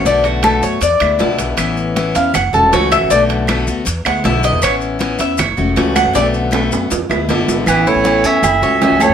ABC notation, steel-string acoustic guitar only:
X:1
M:4/4
L:1/8
Q:1/4=158
K:A
V:1 name="Steel-string acoustic guitar"
[B,,D,A,B,F]2 [B,,D,A,B,F] [A,B,F] z [G,B,E] [B,,D,G,B,E]2 | [E,B,CE]2 [E,B,CE] [B,CE] z [A,CF] [C,E,A,CF]2 | [B,,D,A,B,F]2 [B,,D,A,B,F] [A,B,F] z [G,B,E] [B,,D,G,B,E]2 | [E,B,CE]2 [E,B,CE] [B,CE] z [A,CF] [C,E,A,CF]2 |
[B,,D,A,B,F]2 [B,,D,A,B,F] [A,B,F] z [G,B,E] [B,,D,G,B,E]2 | [E,B,CE]2 [E,B,CE] [B,CE] z [A,CF] [C,E,A,CF]2 |]